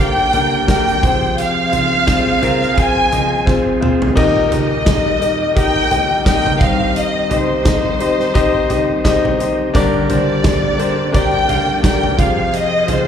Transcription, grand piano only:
0.00 0.99 G2 medium
0.00 0.99 D3 medium
0.00 0.33 A#3 medium
0.00 0.33 D4 medium
0.00 0.34 G4 medium
0.00 0.35 A#4 loud
0.00 1.04 C5 medium
0.33 0.63 A#3 medium
0.33 0.63 D4 medium
0.33 0.63 G4 medium
0.33 0.64 A#4 medium
0.67 0.97 A#3 medium
0.67 0.98 D4 medium
0.67 0.98 G4 medium
0.67 0.98 A#4 medium
1.02 3.78 F2 medium
1.02 3.78 C3 medium
1.02 1.62 C4 medium
1.02 1.62 F4 medium
1.02 1.62 G#4 medium
1.02 1.63 C5 medium
1.72 2.02 C4 medium
1.72 2.02 F4 medium
1.72 2.03 G#4 medium
1.72 2.03 C5 medium
2.07 2.37 C4 medium
2.07 2.37 F4 medium
2.07 2.37 G#4 medium
2.07 2.38 C5 medium
2.42 2.72 C4 medium
2.42 2.72 F4 medium
2.42 2.72 G#4 medium
2.42 2.73 A#4 loud
2.77 3.07 C4 medium
2.77 3.07 F4 medium
2.77 3.07 G#4 medium
2.77 3.08 C5 medium
3.11 3.41 C4 medium
3.11 3.42 F4 medium
3.11 3.42 G#4 medium
3.11 3.42 D#5 medium
3.46 3.76 C4 medium
3.46 3.77 F4 medium
3.46 3.77 G#4 medium
3.46 3.77 C5 medium
3.80 4.11 C4 medium
3.80 4.11 F4 medium
3.80 4.11 G#4 medium
3.80 4.12 C5 medium
4.16 6.57 D#2 medium
4.16 6.57 A#2 medium
4.16 4.46 D#4 loud
4.16 4.46 G4 medium
4.16 4.46 A#4 medium
4.16 4.47 D#5 loud
4.50 4.81 D#4 medium
4.50 4.81 G4 medium
4.50 4.81 A#4 medium
4.50 4.82 D#5 medium
4.86 5.16 D#4 medium
4.86 5.16 G4 medium
4.86 5.16 A#4 medium
4.86 5.17 D#5 medium
5.20 5.50 D#4 medium
5.20 5.51 G4 medium
5.20 5.51 A#4 medium
5.20 5.51 D#5 medium
5.55 5.85 D#4 medium
5.55 5.86 G4 medium
5.55 5.86 A#4 medium
5.55 5.86 D#5 loud
5.90 6.20 D#4 medium
5.90 6.21 G4 medium
5.90 6.21 A#4 medium
5.90 6.21 D#5 medium
6.25 6.55 D#4 medium
6.25 6.55 G4 medium
6.25 6.56 A#4 medium
6.25 6.56 D#5 medium
6.60 9.36 C2 medium
6.60 9.36 G2 medium
6.60 7.20 D#4 medium
6.60 7.20 G4 medium
6.60 7.20 C5 medium
6.60 7.21 D#5 medium
7.29 7.60 D#4 medium
7.29 7.60 G4 medium
7.29 7.60 C5 medium
7.29 7.61 D#5 medium
7.65 7.95 D#4 medium
7.65 7.95 G4 medium
7.65 7.95 C5 medium
7.65 7.96 D#5 medium
7.99 8.29 D#4 medium
7.99 8.30 G4 medium
7.99 8.30 C5 medium
7.99 8.30 D#5 medium
8.34 8.64 D#4 loud
8.34 8.65 G4 loud
8.34 8.65 C5 medium
8.34 8.65 D#5 loud
8.69 8.99 D#4 medium
8.69 9.00 G4 medium
8.69 9.00 C5 medium
8.69 9.00 D#5 medium
9.04 9.34 D#4 loud
9.04 9.35 G4 medium
9.04 9.35 C5 medium
9.04 9.35 D#5 loud
9.39 9.69 D#4 medium
9.39 9.69 G4 medium
9.39 9.70 C5 medium
9.39 9.70 D#5 medium
9.74 12.15 G2 medium
9.74 12.15 D3 medium
9.74 10.04 D4 loud
9.74 10.04 G4 loud
9.74 10.05 A#4 loud
9.74 10.05 D5 loud
10.09 10.39 D4 medium
10.09 10.39 G4 medium
10.09 10.39 A#4 medium
10.09 10.40 C5 medium
10.43 10.73 D4 medium
10.43 10.74 G4 medium
10.43 10.74 A#4 medium
10.43 10.74 D5 medium
10.78 11.08 D4 medium
10.78 11.08 G4 medium
10.78 11.09 A#4 medium
10.78 11.09 C5 medium
11.12 11.43 D4 medium
11.12 11.43 G4 medium
11.12 11.43 A#4 medium
11.12 11.44 D5 loud
11.47 11.78 D4 medium
11.47 11.78 G4 medium
11.47 11.78 A#4 medium
11.47 11.79 F5 medium
11.82 12.13 D4 medium
11.82 12.13 G4 medium
11.82 12.13 A#4 medium
11.82 12.14 D5 medium
12.17 13.08 F2 medium
12.17 13.08 C3 medium
12.17 12.77 F4 medium
12.17 12.78 G#4 medium
12.17 12.78 C5 medium
12.17 12.78 F5 medium
12.87 13.08 F4 medium
12.87 13.08 G#4 medium
12.87 13.08 C5 medium
12.87 13.08 F5 medium

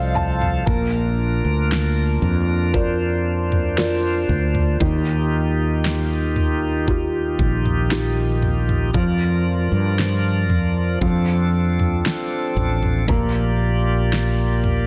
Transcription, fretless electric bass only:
0.00 0.63 C2 medium
0.67 1.41 A#1 medium
1.45 2.18 D2 medium
2.22 4.25 F2 medium
4.29 4.77 D2 medium
4.81 7.35 D#2 loud
7.39 8.91 A#1 medium
8.94 9.68 F2 loud
9.72 10.49 G2 medium
10.49 10.98 F2 medium
11.01 12.01 F2 loud
12.56 13.05 A1 medium
13.08 14.87 A#1 medium

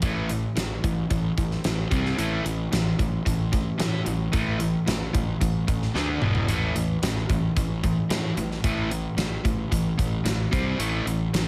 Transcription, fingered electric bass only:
0.03 0.44 A1 medium
0.56 0.77 A1 medium
0.84 1.04 A1 medium
1.11 1.31 A1 medium
1.38 1.58 A1 medium
1.65 1.85 A1 medium
1.91 2.12 C2 medium
2.19 2.39 A1 medium
2.46 2.66 A1 medium
2.73 2.93 A1 medium
2.99 3.20 A1 medium
3.26 3.67 A1 medium
3.80 4.01 A2 medium
4.07 4.27 A1 medium
4.34 4.75 A1 medium
4.88 5.08 A1 medium
5.15 5.35 A1 medium
5.41 5.62 A1 medium
5.68 5.89 A1 medium
5.95 6.15 D2 medium
6.21 6.42 E1 medium
6.49 6.69 A1 medium
6.75 6.96 A1 medium
7.03 7.23 A1 medium
7.30 7.50 A1 medium
7.57 7.97 A1 medium
8.10 8.31 A2 medium
8.37 8.58 A1 medium
8.64 9.05 A1 loud
9.17 9.38 A1 medium
9.45 9.65 A1 medium
9.72 9.92 A1 medium
9.99 10.19 A1 medium
10.25 10.46 A1 medium
10.53 10.73 C2 medium
10.79 11.00 A1 medium
11.06 11.27 A1 medium
11.34 11.48 A1 medium

